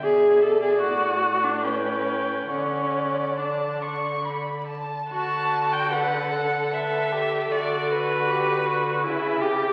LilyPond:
<<
  \new Staff \with { instrumentName = "Violin" } { \time 3/4 \key d \major \tempo 4 = 74 e''4 fis''4 g''4 | fis''4 a''8 cis'''8 b''8 a''8 | a''8. g''16 fis''4 e''4 | d''8 b'2 r8 | }
  \new Staff \with { instrumentName = "Violin" } { \time 3/4 \key d \major d''2 b'4 | d''2~ d''8. r16 | fis'4 a'4 a'8 g'8 | fis'2 e'8 g'8 | }
  \new Staff \with { instrumentName = "Viola" } { \time 3/4 \key d \major gis'8 a'16 gis'16 fis'8. d'16 cis'4 | cis'4 d'4 r4 | fis'4 b'8 a'8 b'8 a'8~ | a'4 g'8 fis'8 e'8 g'8 | }
  \new Staff \with { instrumentName = "Cello" } { \clef bass \time 3/4 \key d \major b,4 a,2 | d2~ d8. r16 | d2. | d2 cis4 | }
>>